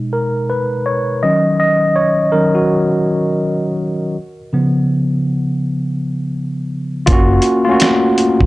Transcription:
Already playing: tine electric piano B2 G#3 D#4
0.13 tine electric piano A#4
0.50 tine electric piano B4
0.86 tine electric piano C#5
1.23 tine electric piano D#3 F#3 C#4 D#5
1.60 tine electric piano D#5
1.96 tine electric piano C#5
2.32 tine electric piano D#3 F#3 C#4 A#4
2.55 tine electric piano F#4
4.53 tine electric piano C#3 F3 B3
7.06 fingered electric bass F#1, tine electric piano A#3 C#4 F4, kick, closed hi-hat
7.13 tine electric piano F#4
7.42 closed hi-hat
7.65 tine electric piano A3 F4
7.69 tine electric piano C#4 F#4
7.74 tine electric piano A#3
7.80 finger snap, snare, closed hi-hat
8.18 closed hi-hat
8.41 fingered electric bass A#1, kick

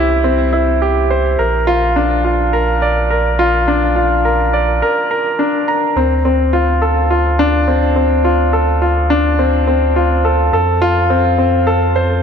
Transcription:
Already playing: sub bass C2, grand piano C4 E4 G4 C5
0.24 grand piano C4
0.53 grand piano E4
0.82 grand piano G4
1.10 grand piano C5
1.39 sub bass A#1, grand piano A#4
1.67 grand piano F4
1.96 grand piano D4
2.24 grand piano F4
2.53 grand piano A#4
2.82 grand piano D5
3.10 grand piano A#4
3.39 grand piano F4
3.68 grand piano D4
3.96 grand piano F4
4.25 grand piano A#4
4.53 grand piano D5
4.82 grand piano A#4
5.11 grand piano A#4
5.39 grand piano D4
5.68 grand piano A#5
5.96 sub bass D2, grand piano C4
6.25 grand piano C4
6.53 grand piano F4
6.82 grand piano A4
7.10 grand piano F4
7.39 grand piano D4
7.68 grand piano C4
7.96 grand piano C4
8.25 grand piano F4
8.53 grand piano A4
8.82 grand piano F4
9.10 grand piano D4
9.39 grand piano C4
9.67 grand piano C4
9.96 grand piano F4
10.25 grand piano A4
10.53 sub bass F2, grand piano A4
10.82 grand piano F4
11.10 grand piano C4
11.38 grand piano C4
11.67 grand piano A4
11.96 grand piano C5

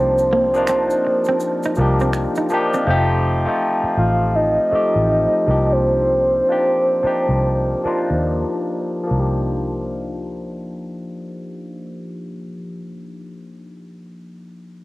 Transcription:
Already playing: fingered electric bass C2, tine electric piano F3 A#3 D4 D#4 G4, soft synth lead C5
0.18 shaker
0.33 clean electric guitar A#3
0.53 tine electric piano F3 A#3 D4 D#4 F4, shaker
0.67 clean electric guitar C4, finger snap, shaker
0.90 shaker
1.07 muted clean electric guitar stroke
1.24 shaker
1.29 clean electric guitar C4
1.40 shaker
1.63 clean electric guitar D#4, shaker
1.75 fingered electric bass C2, tine electric piano F3 A#3 D4, shaker
1.79 tine electric piano D#4 G4, muted clean electric guitar stroke
2.00 clean electric guitar C4, shaker
2.13 finger snap, shaker
2.35 clean electric guitar D#4, shaker
2.49 tine electric piano F3 A#3 D4 D#4, muted clean electric guitar stroke, shaker
2.54 tine electric piano G4
2.74 clean electric guitar C4, shaker
2.87 fingered electric bass F1, tine electric piano F3 A3 C4 D#4 G4
3.45 tine electric piano F3 A3 C4 D#4
3.50 tine electric piano F4
3.84 muted fingered electric bass stroke
3.97 fingered electric bass A1, soft synth lead F5
4.35 soft synth lead D#5
4.71 tine electric piano F3 A3 C4 D#4 G4, muted fingered electric bass stroke
4.96 fingered electric bass A1
5.47 fingered electric bass C2, tine electric piano F3 A#3 D4 D#4
5.51 tine electric piano G4
5.72 soft synth lead C5
6.48 tine electric piano F3 A#3 D4 D#4 G4
7.03 tine electric piano F3 A#3 D4 D#4, muted fingered electric bass stroke
7.07 tine electric piano G4
7.29 fingered electric bass C2
7.84 tine electric piano F3 A#3 D4 D#4 F4, muted fingered electric bass stroke
8.10 fingered electric bass D#2
9.03 tine electric piano F3 A#3
9.11 fingered electric bass C2, tine electric piano D4
9.15 tine electric piano D#4
9.19 tine electric piano G4

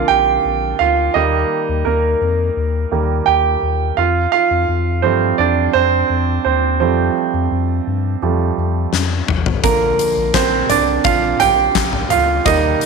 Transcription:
Already playing: grand piano D3 F3 A#3 C4 D4 F4 A#4 C5 D5 F5
0.08 analog synth bass A#1, grand piano G4 G5
0.45 analog synth bass A#1
0.79 analog synth bass D2, grand piano F4 F5
1.14 analog synth bass D#2, grand piano D#3 G3 A#3 D#4 D#5
1.69 analog synth bass D#2
1.85 analog synth bass D#2, grand piano A#3 A#4
2.21 analog synth bass F2
2.57 analog synth bass D#2
2.92 analog synth bass D#2, grand piano D#3 G3 A#3
3.26 analog synth bass D#2, grand piano G4 G5
3.63 analog synth bass D#2
3.97 analog synth bass F2, grand piano F4 F5
4.32 grand piano F4 F5
4.51 analog synth bass F2
4.69 analog synth bass F2
5.02 analog synth bass G2, grand piano F3 G3 A3 C4 C5
5.38 analog synth bass F2, grand piano D4 D5
5.73 analog synth bass F2, grand piano C4 C5
6.10 analog synth bass F2
6.45 analog synth bass D#2, grand piano C4 C5
6.80 analog synth bass F2, grand piano F3 G3 A3 C4 C5
7.34 analog synth bass F2
7.52 analog synth bass F2
7.87 analog synth bass G2
8.22 analog synth bass F2, grand piano F3 G3 A3
8.58 analog synth bass F2
8.93 analog synth bass F2, snare
9.28 analog synth bass A1, mid tom
9.46 floor tom
9.63 analog synth bass A#1, grand piano D3 F3 A#3 A#4, kick, closed hi-hat
9.99 closed hi-hat
10.17 analog synth bass A#1
10.34 analog synth bass A#1, grand piano C4 C5, kick, snare, clap, closed hi-hat
10.70 analog synth bass C2, grand piano D4 D5, closed hi-hat, floor tom
11.04 analog synth bass A#1, grand piano F4 F5, kick, closed hi-hat
11.40 analog synth bass A#1, grand piano G4 G5, closed hi-hat, floor tom
11.75 analog synth bass A#1, kick, snare, clap, closed hi-hat
11.93 floor tom
12.10 analog synth bass D2, grand piano F4 F5, closed hi-hat, floor tom
12.45 analog synth bass D#2, grand piano D#3 G3 A#3 D#4 D#5, kick, closed hi-hat
12.81 closed hi-hat

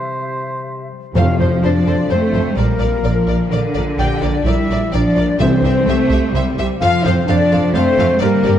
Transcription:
Already playing: french horn section C3, harp C3 G3 E4 G4 E5, clarinet G4, oboe C5, flute E5
0.18 harp C5
0.42 harp G4
0.67 harp C5
0.91 harp G3
1.14 double bass section F2, harp F2, timpani F2, cello section F3, french horn section F4, viola section A4 C5, violin section C5 F5, clarinet F5, flute F5
1.27 harp C3
1.39 double bass section F2, harp A3, french horn section C4, viola section A4 C5, flute C5, clarinet C5, violin section C5
1.51 harp F4
1.62 double bass section F2, french horn section D4, viola section A4 C5, harp C5, violin section C5 D5, flute D5, clarinet D5
1.74 harp A4
1.86 double bass section F2, viola section A4 C5, violin section C5, harp F5
1.98 harp C6
2.10 double bass section F2, cello section A3, french horn section C4, viola section A4 C5, clarinet C5, violin section C5, flute C5, harp F5
2.22 harp C5
2.33 double bass section F2, harp A3, viola section A4 C5, violin section C5
2.45 harp C3
2.56 double bass section A#1, harp A#2, cello section G3, french horn section A#3, clarinet A#4, viola section A#4, violin section A#4 D5, flute A#4
2.68 harp F3
2.79 double bass section A#1, viola section A#4, violin section D5
2.92 harp F4
3.03 double bass section A#1, cello section F3, viola section A#4, harp D5, violin section D5
3.15 harp A#4
3.27 double bass section A#1, viola section A#4, violin section D5, harp F5
3.39 harp D6
3.50 double bass section A#1, cello section D3, viola section A#4, violin section D5, harp F5
3.62 harp D5
3.74 double bass section A#1, harp A#3, viola section A#4, violin section D5
3.86 harp F3
3.98 double bass section A#1, harp A#2, french horn section G4, viola section A#4 D5, violin section D5 G5, clarinet G5, flute G5
4.10 harp G3
4.21 double bass section A#1, harp A#3, french horn section D4, viola section A#4 D5, violin section D5, flute D5, clarinet D5
4.33 harp G4
4.45 double bass section A#1, cello section G3, french horn section E4, viola section A#4 D5, violin section D5 E5, flute E5, clarinet E5
4.56 harp A#4
4.68 double bass section A#1, viola section A#4 D5, violin section D5, harp G5
4.80 harp D6
4.92 double bass section A#1, cello section F3, french horn section D4, viola section A#4 D5, violin section D5, flute D5, clarinet D5, harp G5
5.15 double bass section A#1, harp A#3, viola section A#4 D5, violin section D5
5.26 harp G3
5.39 double bass section C2, harp C3, timpani C3, cello section E3, french horn section C4, viola section G4 C5, flute C5, violin section C5 E5, clarinet C5
5.51 harp C4
5.62 double bass section C2, harp G3, viola section G4 C5, violin section E5
5.75 harp E4
5.86 double bass section C2, cello section A3, viola section G4 C5, harp C5, violin section E5
5.98 harp G4
6.09 double bass section C2, viola section G4 C5, harp E5, violin section E5
6.22 harp C6
6.33 double bass section C2, cello section G3, viola section G4 C5, harp E5, violin section E5
6.45 harp C5
6.57 double bass section C2, harp G3, viola section G4 C5, violin section E5
6.70 harp C4
6.80 double bass section F2, harp F2, cello section F3, french horn section F4, viola section A4 C5, flute F5, clarinet F5, violin section F5
6.93 harp C3
7.05 double bass section F2, harp A3, french horn section C4, viola section A4 C5, violin section C5 F5, clarinet C5, flute C5
7.16 harp F4
7.26 double bass section F2, cello section F3, french horn section D4, viola section A4 C5, harp C5, flute D5, violin section D5 F5, clarinet D5
7.40 harp A4
7.51 double bass section F2, viola section A4 C5, violin section F5, harp F5
7.64 harp C6
7.73 double bass section F2, cello section A3, french horn section C4, viola section A4 C5, flute C5, clarinet C5, violin section C5 F5, harp F5
7.87 harp C5
7.97 double bass section F2, harp A3, viola section A4 C5, violin section F5
8.10 harp C3
8.20 double bass section G2, harp G2, cello section G3, french horn section A#3, viola section G4 A#4, clarinet A#4, violin section A#4 D5, flute A#4
8.33 harp D3
8.44 double bass section G2, viola section G4 A#4, violin section D5
8.56 harp D4

